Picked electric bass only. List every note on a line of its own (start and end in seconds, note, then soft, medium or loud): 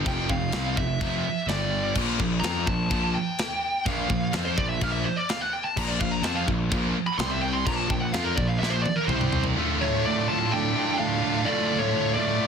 0.05 0.28 F1 loud
0.30 0.52 F1 medium
0.53 0.76 C2 loud
0.77 0.99 F1 medium
1.00 1.23 F1 loud
1.47 1.92 G1 medium
1.95 2.18 A#1 medium
2.19 2.42 A#1 medium
2.43 2.66 F2 medium
2.66 2.89 A#1 medium
2.90 3.13 A#1 loud
3.86 4.08 A#1 medium
4.09 4.32 A#1 medium
4.34 4.56 F2 loud
4.58 4.80 A#1 medium
4.81 5.04 A#1 loud
5.77 5.99 A#1 loud
6.00 6.21 A#1 medium
6.22 6.45 F2 loud
6.48 6.70 A#1 medium
6.71 6.94 A#1 loud
7.18 7.63 C2 loud
7.66 7.88 A#1 medium
7.89 8.12 A#1 medium
8.14 8.36 F2 loud
8.37 8.59 A#1 medium
8.62 8.84 A#1 loud
9.08 9.52 C2 loud